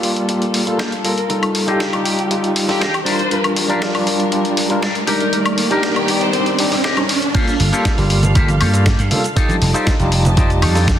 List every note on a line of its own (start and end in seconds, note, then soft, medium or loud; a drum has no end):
0.00 0.26 G3 medium
0.00 1.28 G3 medium
0.00 0.26 A#3 medium
0.00 1.28 A#3 medium
0.00 0.26 F4 medium
0.00 3.02 F4 medium
0.00 0.26 G4 medium
0.00 3.02 A4 medium
0.00 muted clean electric guitar stroke medium
0.00 open hi-hat medium
0.00 riser medium
0.16 muted clean electric guitar stroke soft
0.16 closed hi-hat soft
0.29 0.64 G3 medium
0.29 0.64 A#3 medium
0.29 0.64 F4 medium
0.29 0.64 G4 medium
0.29 closed hi-hat medium
0.42 closed hi-hat soft
0.54 open hi-hat loud
0.66 0.81 G3 medium
0.66 0.81 A#3 medium
0.66 0.81 F4 medium
0.66 0.81 A4 medium
0.66 muted clean electric guitar stroke loud
0.66 closed hi-hat soft
0.78 0.92 A#3 medium
0.78 0.92 F4 medium
0.78 0.92 G4 medium
0.78 0.92 A4 medium
0.78 snare loud
0.78 closed hi-hat medium
0.92 closed hi-hat soft
1.03 1.19 G3 medium
1.03 1.19 A#3 medium
1.03 1.19 F4 medium
1.03 1.19 A4 loud
1.03 1.12 A#4 medium
1.03 muted clean electric guitar stroke soft
1.03 open hi-hat loud
1.17 1.25 A#4 medium
1.17 closed hi-hat soft
1.28 1.65 G3 medium
1.28 7.31 G3 medium
1.28 3.04 D#4 medium
1.28 1.65 D#4 medium
1.28 1.65 F4 medium
1.28 1.65 A4 medium
1.28 muted clean electric guitar stroke loud
1.28 closed hi-hat medium
1.41 muted clean electric guitar stroke soft
1.41 closed hi-hat soft
1.41 high woodblock medium
1.55 open hi-hat loud
1.67 1.90 G3 medium
1.67 1.86 D#4 medium
1.67 1.90 D#4 medium
1.67 1.86 F4 medium
1.67 1.90 F4 medium
1.67 1.86 G4 medium
1.67 2.38 G4 medium
1.67 1.86 A4 medium
1.67 1.90 A4 loud
1.67 closed hi-hat soft
1.80 snare loud
1.80 closed hi-hat medium
1.93 2.28 G3 medium
1.93 2.28 D#4 medium
1.93 2.28 F4 medium
1.93 2.28 G4 loud
1.93 closed hi-hat soft
1.93 high woodblock medium
2.05 muted clean electric guitar stroke medium
2.05 open hi-hat loud
2.17 muted clean electric guitar stroke soft
2.17 closed hi-hat soft
2.30 2.65 G3 medium
2.30 2.66 D#4 medium
2.30 2.66 F4 medium
2.30 2.66 G4 medium
2.30 closed hi-hat medium
2.44 closed hi-hat soft
2.56 open hi-hat loud
2.67 2.82 G3 medium
2.67 2.82 D#4 medium
2.67 2.82 F4 medium
2.67 3.03 G4 medium
2.67 2.83 A4 medium
2.67 muted clean electric guitar stroke loud
2.67 snare soft
2.67 open hi-hat medium
2.80 2.93 D#4 medium
2.80 2.93 F4 medium
2.80 2.94 G4 medium
2.80 2.94 A4 medium
2.80 snare loud
2.80 closed hi-hat medium
2.94 closed hi-hat soft
2.94 high woodblock medium
3.05 3.20 G3 medium
3.05 3.36 D4 medium
3.05 3.20 D4 medium
3.05 5.06 D4 medium
3.05 3.20 F4 medium
3.05 3.36 G4 medium
3.05 3.36 A#4 loud
3.05 5.06 A#4 medium
3.05 3.21 A#4 loud
3.05 3.56 C5 medium
3.05 open hi-hat loud
3.19 closed hi-hat soft
3.31 3.66 G3 medium
3.31 3.66 D4 medium
3.31 3.67 F4 medium
3.31 3.67 A#4 medium
3.31 closed hi-hat medium
3.43 muted clean electric guitar stroke soft
3.43 closed hi-hat soft
3.43 high woodblock medium
3.56 open hi-hat loud
3.68 3.91 G3 loud
3.68 3.88 D4 medium
3.68 3.91 D4 medium
3.68 3.92 F4 medium
3.68 3.88 G4 medium
3.68 3.88 A#4 medium
3.68 3.92 A#4 loud
3.68 closed hi-hat soft
3.82 snare loud
3.82 closed hi-hat medium
3.95 4.29 G3 medium
3.95 4.29 D4 medium
3.95 4.29 F4 medium
3.95 4.30 G4 loud
3.95 open hi-hat medium
3.95 high woodblock medium
4.06 muted clean electric guitar stroke medium
4.06 open hi-hat loud
4.19 muted clean electric guitar stroke soft
4.19 closed hi-hat soft
4.32 4.67 G3 medium
4.32 4.67 D4 medium
4.32 4.67 F4 medium
4.32 4.68 G4 medium
4.32 closed hi-hat medium
4.45 closed hi-hat soft
4.57 open hi-hat loud
4.69 4.84 G3 medium
4.69 4.84 D4 medium
4.69 4.84 F4 medium
4.69 4.85 A#4 medium
4.69 muted clean electric guitar stroke loud
4.69 closed hi-hat soft
4.82 4.95 D4 loud
4.82 4.95 G4 medium
4.82 4.96 A#4 loud
4.82 snare loud
4.82 closed hi-hat medium
4.95 closed hi-hat soft
5.07 7.32 D#3 medium
5.07 5.22 G3 medium
5.07 5.22 D4 medium
5.07 5.38 D#4 loud
5.07 5.22 D#4 medium
5.07 5.38 G4 medium
5.07 5.16 A#4 medium
5.07 5.22 A#4 loud
5.07 7.32 D5 loud
5.07 5.38 D5 loud
5.07 open hi-hat loud
5.20 5.28 A#4 medium
5.20 closed hi-hat soft
5.33 5.68 G3 medium
5.33 5.68 D#4 medium
5.33 5.68 A#4 medium
5.33 5.68 D5 medium
5.33 closed hi-hat medium
5.45 muted clean electric guitar stroke soft
5.45 closed hi-hat soft
5.45 high woodblock medium
5.58 open hi-hat loud
5.70 5.93 G3 loud
5.70 5.93 D4 medium
5.70 5.90 D#4 medium
5.70 5.93 D#4 medium
5.70 6.41 G4 medium
5.70 5.90 G4 medium
5.70 5.94 A#4 loud
5.70 5.90 D5 medium
5.70 closed hi-hat soft
5.83 snare loud
5.83 closed hi-hat medium
5.96 6.31 G3 medium
5.96 6.31 D#4 medium
5.96 6.31 G4 loud
5.96 6.31 D5 medium
5.96 closed hi-hat soft
5.96 high woodblock medium
6.08 muted clean electric guitar stroke medium
6.08 open hi-hat loud
6.21 6.29 C5 medium
6.21 muted clean electric guitar stroke soft
6.21 closed hi-hat soft
6.33 6.56 G3 medium
6.33 6.57 D4 medium
6.33 6.57 D#4 medium
6.33 6.57 G4 medium
6.33 6.41 C5 medium
6.33 closed hi-hat medium
6.46 closed hi-hat soft
6.59 6.73 G3 medium
6.59 6.73 D4 medium
6.59 6.74 D#4 medium
6.59 6.74 G4 medium
6.59 open hi-hat loud
6.71 muted clean electric guitar stroke loud
6.71 snare soft
6.71 open hi-hat medium
6.83 6.97 D#4 medium
6.83 6.97 G4 medium
6.83 6.97 D5 loud
6.83 snare loud
6.83 closed hi-hat medium
6.97 7.06 G3 medium
6.97 7.06 D4 medium
6.97 7.06 D#4 medium
6.97 7.06 C5 loud
6.97 closed hi-hat soft
6.97 high woodblock medium
7.09 muted clean electric guitar stroke soft
7.09 open hi-hat loud
7.22 closed hi-hat soft
7.34 7.70 G3 medium
7.34 7.53 A#3 loud
7.34 7.70 A#3 medium
7.34 7.54 F4 loud
7.34 7.70 F4 medium
7.34 7.54 G4 loud
7.34 7.54 A4 loud
7.34 9.34 A4 medium
7.34 7.70 A4 medium
7.34 9.34 F5 medium
7.34 kick loud
7.34 closed hi-hat loud
7.34 crash loud
7.34 cabasa medium
7.48 closed hi-hat soft
7.48 cabasa soft
7.60 7.69 G1 loud
7.60 open hi-hat loud
7.72 7.95 G3 medium
7.72 7.91 A#3 medium
7.72 7.95 A#3 medium
7.72 7.91 F4 medium
7.72 7.95 F4 medium
7.72 7.92 G4 medium
7.72 7.92 A4 loud
7.72 7.95 A4 loud
7.72 closed hi-hat soft
7.72 cabasa medium
7.85 kick loud
7.85 snare loud
7.85 closed hi-hat loud
7.85 cabasa medium
7.98 8.30 G1 loud
7.98 8.32 G3 medium
7.98 8.32 A#3 medium
7.98 8.33 F4 medium
7.98 8.33 G4 loud
7.98 open hi-hat medium
7.98 cabasa soft
8.10 muted clean electric guitar stroke soft
8.10 open hi-hat loud
8.23 closed hi-hat soft
8.23 low conga loud
8.23 cabasa medium
8.35 8.62 G1 medium
8.35 8.70 G3 medium
8.35 8.48 A#3 medium
8.35 8.71 A#3 medium
8.35 8.48 F4 medium
8.35 8.48 G4 medium
8.35 8.71 G4 medium
8.35 8.49 A4 medium
8.35 kick loud
8.35 closed hi-hat loud
8.35 cabasa medium
8.48 closed hi-hat soft
8.48 high conga medium
8.48 cabasa soft
8.60 8.94 G2 loud
8.60 8.99 A#3 medium
8.60 8.99 F4 medium
8.60 8.99 G4 medium
8.60 8.99 A4 medium
8.60 open hi-hat loud
8.60 high woodblock medium
8.73 8.87 G3 medium
8.73 8.87 A#3 medium
8.73 8.87 F4 medium
8.73 8.88 A4 medium
8.73 closed hi-hat soft
8.73 cabasa medium
8.86 kick loud
8.86 snare loud
8.86 closed hi-hat medium
8.86 cabasa medium
8.99 9.08 G2 medium
8.99 closed hi-hat soft
8.99 cabasa soft
9.10 9.25 G3 medium
9.10 9.25 A#3 medium
9.10 9.25 F4 medium
9.10 9.26 A4 loud
9.10 open hi-hat loud
9.10 low conga medium
9.24 closed hi-hat soft
9.24 cabasa medium
9.35 9.71 G3 medium
9.35 9.71 D#4 medium
9.35 9.55 D#4 loud
9.35 9.71 F4 medium
9.35 9.55 F4 loud
9.35 10.99 G4 medium
9.35 9.56 G4 loud
9.35 9.71 A4 medium
9.35 9.56 A4 loud
9.35 10.99 D#5 medium
9.35 10.99 A5 medium
9.35 kick loud
9.35 closed hi-hat loud
9.35 cabasa medium
9.49 closed hi-hat soft
9.49 high conga medium
9.49 cabasa soft
9.61 9.71 F1 medium
9.61 open hi-hat loud
9.74 9.96 G3 loud
9.74 9.93 D#4 medium
9.74 9.96 D#4 medium
9.74 9.97 F4 medium
9.74 9.93 F4 medium
9.74 9.93 G4 medium
9.74 9.97 A4 loud
9.74 9.93 C5 medium
9.74 closed hi-hat soft
9.74 cabasa medium
9.87 kick loud
9.87 snare loud
9.87 closed hi-hat medium
9.87 cabasa medium
9.99 10.32 F1 loud
9.99 10.34 G3 medium
9.99 10.34 D#4 medium
9.99 10.34 F4 medium
9.99 10.34 G4 loud
9.99 closed hi-hat soft
9.99 cabasa soft
10.12 muted clean electric guitar stroke soft
10.12 open hi-hat loud
10.25 closed hi-hat soft
10.25 low conga loud
10.25 cabasa medium
10.36 10.64 F1 medium
10.36 10.72 G3 medium
10.36 10.50 D#4 medium
10.36 10.72 D#4 medium
10.36 10.72 F4 medium
10.36 10.50 F4 medium
10.36 10.50 G4 medium
10.36 10.72 G4 medium
10.36 10.50 C5 loud
10.36 kick loud
10.36 closed hi-hat loud
10.36 cabasa medium
10.50 closed hi-hat soft
10.50 cabasa soft
10.62 10.95 F2 loud
10.62 10.99 D#4 medium
10.62 10.99 F4 medium
10.62 10.99 G4 medium
10.62 10.99 A4 loud
10.62 open hi-hat loud
10.62 high woodblock medium
10.74 10.89 G3 medium
10.74 10.89 D#4 medium
10.74 10.89 F4 medium
10.74 10.89 A4 loud
10.74 snare soft
10.74 open hi-hat medium
10.74 cabasa medium
10.88 kick loud
10.88 snare loud
10.88 closed hi-hat medium
10.88 cabasa medium